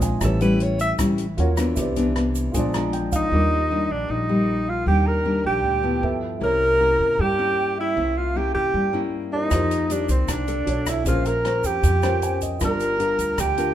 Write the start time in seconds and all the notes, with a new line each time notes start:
Already playing: A#1 G#3 C4 D4 F4 G#4 C5 D5 F5
0.02 G#5, kick, closed hi-hat, shaker
0.19 A1 A2 G3 C#4 E4 G4, kick, cross-stick, closed hi-hat, shaker
0.23 A4 B4 C#5
0.41 G3 C#4 E4 B4, closed hi-hat, shaker
0.60 C#5, closed hi-hat
0.79 E5, closed hi-hat, shaker
0.98 A1 E3 G3 C#4 E4, kick, cross-stick, closed hi-hat, shaker
1.18 closed hi-hat, shaker
1.37 D#2 A#3 C#4 F4 F#4 A#4 C#5, closed hi-hat
1.57 E3 B3 D4, cross-stick, closed hi-hat, shaker
1.75 C2 C3 E4 G4 B4, kick, closed hi-hat, shaker
1.81 D5
1.96 E3 B3 D4, closed hi-hat, shaker
2.16 E3 B3 D4, cross-stick, closed hi-hat
2.35 closed hi-hat, shaker
2.52 A#1 A#2 F3 G#3 D4 F4 G#4, kick, closed hi-hat, shaker
2.56 C5 D5
2.73 F3 G#3 D4 A#5, cross-stick, closed hi-hat, shaker
2.93 G5, closed hi-hat
3.12 D#4 D#5 F5, kick, closed hi-hat, shaker
3.29 D#2 D#3 G3 D4 F4 G4
3.33 A#3 A#4 D6
3.71 G3 A#3 D4
3.90 A#1 D4 D5
4.08 A#1 A#2 D#4 D#5
4.29 G3 A#3
4.68 F4 F5
4.86 D#2 D#3 G3 A#3 D4 G4 G5
5.06 A#4 A#5
5.25 G3 A#3 D4
5.45 A#1 G4 G5
5.64 D2 A#2
5.83 F3 B3 E4
6.02 G2 A4 B4 E5
6.38 C2 C3 A#3 C#4 E4 G4 A#5
6.42 A#4 C#5
6.80 A#3 C#4 E4
7.00 G2
7.19 G2 G3 G4 G5
7.38 A#3 C#4 E4
7.77 E4 E5
7.96 C2 C3 A#3 C#4 E4
8.17 F4 F5
8.35 A#3 C#4 E4 G4 G5
8.54 G2 G4 G5
8.74 G2 G3
8.93 A#3 C#4 E4
9.31 D#4 E4 G4 A#4 C#5 D#5
9.48 F2 F3 A#3 D#4 F4 G4, kick, cross-stick, closed hi-hat, shaker
9.52 A#4 C5
9.71 closed hi-hat, shaker
9.90 A#3 D4 D#4 G4 D5, closed hi-hat, shaker
10.09 C2 C4 C5, kick, closed hi-hat, shaker
10.28 C2 C3 D4 D5, kick, cross-stick, closed hi-hat, shaker
10.48 D4 A4, closed hi-hat, shaker
10.65 B1 D4 F#4 A4 C#5, closed hi-hat
10.86 E4 E5, kick, cross-stick, closed hi-hat, shaker
11.03 A#1 A#3 C#4 F4 G#4 C5 F5, kick, closed hi-hat, shaker
11.07 F4 A#4 C5
11.25 A#4 A#5, closed hi-hat, shaker
11.45 C#4 C5, cross-stick, closed hi-hat
11.64 F2 G4 G5, kick, closed hi-hat, shaker
11.83 F2 F3, kick, closed hi-hat, shaker
12.02 C#4 F4 A#4 C5, cross-stick, closed hi-hat, shaker
12.22 G#5, closed hi-hat, shaker
12.41 D#5, kick, closed hi-hat, shaker
12.59 G1 G3 D4 F4 G4 A#4 A#5, kick, cross-stick, closed hi-hat, shaker
12.64 A#4 D5
12.80 closed hi-hat, shaker
13.00 D4 F4 A#4, closed hi-hat
13.19 D2, kick, closed hi-hat, shaker
13.38 D2 D3 G4 G5, kick, cross-stick, closed hi-hat, shaker
13.58 D4 F4 A#4, closed hi-hat, shaker